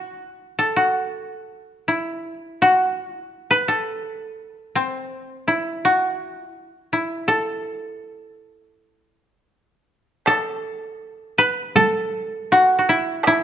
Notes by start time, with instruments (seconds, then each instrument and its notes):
Already playing: koto E4 F#4
0.59 koto A4
0.76 koto F#4
1.88 koto E4
2.62 koto F#4
3.16 koto E4
3.51 koto B4
3.68 koto A4
4.75 koto C4
5.48 koto E4
5.85 koto F#4
6.38 koto F4
6.51 koto E4
6.93 koto E4
7.28 koto A4
10.26 koto A4, taiko rim
11.38 koto B4
11.76 koto A4, taiko high
12.52 koto F#4
12.79 koto F#4
12.89 koto E4
13.23 koto E4, taiko rim